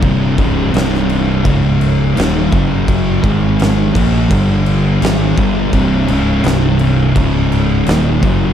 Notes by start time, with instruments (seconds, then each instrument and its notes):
0.02 fingered electric bass C1, distorted electric guitar C2 G2 C3, kick, crash
0.38 fingered electric bass C#1, distorted electric guitar C#2 G#2 C#3, kick, crash
0.73 fingered electric bass C1, distorted electric guitar C2 G2 C3, crash
0.77 snare
1.09 crash
1.45 fingered electric bass C#1, distorted electric guitar C#2 G#2 C#3, kick, crash
1.81 crash
2.16 fingered electric bass D#1, distorted electric guitar D#2 A#2 D#3, snare, crash
2.51 fingered electric bass F#1, distorted electric guitar F#2 C#3 F#3, kick, crash
2.88 kick, crash
3.23 fingered electric bass G#1, distorted electric guitar G#2 D#3 G#3, kick, crash
3.59 snare, crash
3.94 fingered electric bass A#1, distorted electric guitar A#2 F3 A#3, kick, crash
4.31 fingered electric bass G1, distorted electric guitar G2 D3 G3, kick, crash
4.66 crash
5.01 fingered electric bass G#1, distorted electric guitar G#2 D#3 G#3, snare, crash
5.37 fingered electric bass G1, distorted electric guitar G2 D3 G3, kick, crash
5.73 fingered electric bass C1, distorted electric guitar C2 G2 C3, kick, crash
6.08 fingered electric bass C#1, distorted electric guitar C#2 G#2 C#3, crash
6.43 fingered electric bass C1, distorted electric guitar C2 G2 C3, snare, crash
6.79 crash
7.16 fingered electric bass C#1, distorted electric guitar C#2 G#2 C#3, kick, crash
7.52 crash
7.86 fingered electric bass D#1, distorted electric guitar D#2 A#2 D#3, snare, crash
8.23 fingered electric bass F#1, distorted electric guitar F#2 C#3 F#3, kick, crash